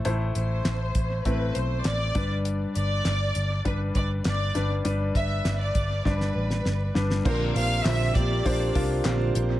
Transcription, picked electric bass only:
\new Staff \with { instrumentName = "Picked electric bass" } { \clef bass \time 4/4 \key g \mixolydian \tempo 4 = 100 a,,8 a,,8 a,,8 a,,8 a,,8 b,,8 a,,8 g,,8~ | g,,8 g,,8 g,,8 g,,8 g,,8 g,,8 g,,8 g,,8 | g,,8 g,,8 g,,8 g,,8 g,,8 a,,8 g,,8 g,,8 | bes,,8 bes,,8 bes,,8 bes,,8 bes,,8 c,8 bes,,8 bes,,8 | }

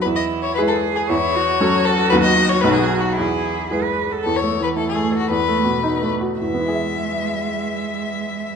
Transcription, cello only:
\new Staff \with { instrumentName = "Cello" } { \time 2/4 \key e \major \tempo 4 = 112 e'4 gis'4 | e'8 fis'4.~ | fis'4 fis'4 | gis'4 gis'16 b'8 a'16 |
r8 a8 r8 a8 | r8 a8 r8 a8 | gis2~ | gis2 | }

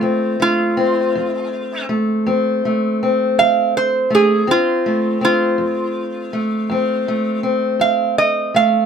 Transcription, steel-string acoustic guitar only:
\new Staff \with { instrumentName = "Steel-string acoustic guitar" } { \time 12/8 \key f \major \tempo 4. = 54 << { c'8 a8 c'4. a8 c'8 a8 c'4. a8 | c'8 a8 c'4. a8 c'8 a8 c'4. a8 | } \\ { f,4 r8 f,4 r8 f,4 r8 f,4 r8 | f,4 r8 f,4 r8 f,4 r8 f,4 r8 | } >> }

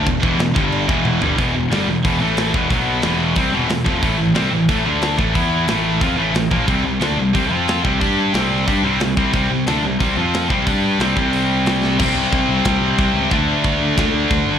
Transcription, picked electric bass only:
\new Staff \with { instrumentName = "Picked electric bass" } { \clef bass \time 4/4 \key c \major \tempo 4 = 181 e,,8 e,,8 e,,8 g,,4 e,,4 g,,8 | e,,8 e,,8 g,,8 e,,8 e,,8 a,,4 e,,8 | b,,4 e,,4 c,8 e,,8 e,,8 f,,8 | a,,8 a,,8 c,8 a,,8 a,,8 d,4 a,,8 |
e,4 a,,4 f,8 a,,8 a,,8 ais,,8 | c,8 c,8 d,8 c,8 c,8 f,4 c,8 | g,4 c,4 g,8 c,8 c,8 c,8 | c,8 c,8 d,8 c,8 c,8 f,4 c,8 |
g,4 c,8 c,2~ c,8 | c,8 c,8 c,8 c,8 c,8 c,8 c,8 cis,8 | d,4 d,8 d,8 d,8 d,8 d,8 g,,8 | }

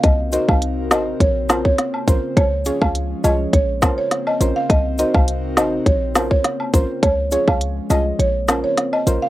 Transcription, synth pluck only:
\new Staff \with { instrumentName = "Synth pluck" } { \time 4/4 \key bes \minor \tempo 4 = 103 r8 <ees' ges' bes' c''>8 r8 <ees' ges' bes' c''>8 r8 <des' f' bes' c''>8 r8 <des' f' bes' c''>8 | r8 <des' f' aes' des''>8 r8 <des' f' aes' des''>8 r8 <des' f' bes' c''>8 r8 <des' f' bes' c''>8 | r8 <ees' ges' bes' c''>8 r8 <ees' ges' bes' c''>8 r8 <des' f' bes' c''>8 r8 <des' f' bes' c''>8 | r8 <des' f' aes' des''>8 r8 <des' f' aes' ees''>8 r8 <des' f' bes' c''>8 r8 <des' f' bes' c''>8 | }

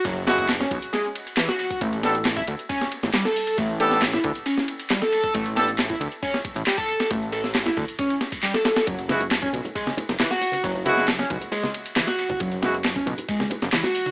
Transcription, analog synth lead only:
\new Staff \with { instrumentName = "Analog synth lead" } { \time 4/4 \key fis \minor \tempo 4 = 136 fis16 r16 fis'16 r8 cis'16 r8 gis16 r8. e16 fis'8. | a16 r16 a'16 r8 e'16 r8 cis'16 r8. g16 a'8. | a16 r16 a'16 r8 e'16 r8 cis'16 r8. g16 a'8. | a16 r16 a'16 r8 e'16 r8 cis'16 r8. g16 a'8. |
a16 r16 a'16 r8 e'16 r8 cis'16 r8. g16 a'8. | fis16 r16 fis'16 r8 cis'16 r8 gis16 r8. e16 fis'8. | fis16 r16 fis'16 r8 cis'16 r8 gis16 r8. e16 fis'8. | fis16 r16 fis'16 r8 cis'16 r8 gis16 r8. e16 fis'8. | }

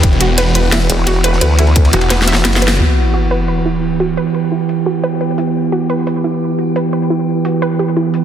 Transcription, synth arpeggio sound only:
\new Staff \with { instrumentName = "Synth arpeggio sound" } { \time 4/4 \key e \minor \tempo 4 = 174 r8 fis'8 b'8 b'8 e'8 r8 fis'8 b'8 | b'8 e'8 r8 fis'8 b'8 e''8 e'8 b'8 | e'8 r8 fis'8 b'8 b'8 e'8 r8 fis'8 | b'8 b'8 e'8 r8 fis'8 b'8 b'8 e'8 |
r8 fis'8 b'8 b'8 e'8 r8 fis'8 b'8 | b'8 e'8 r8 fis'8 b'8 g'8 e'8 r8 | }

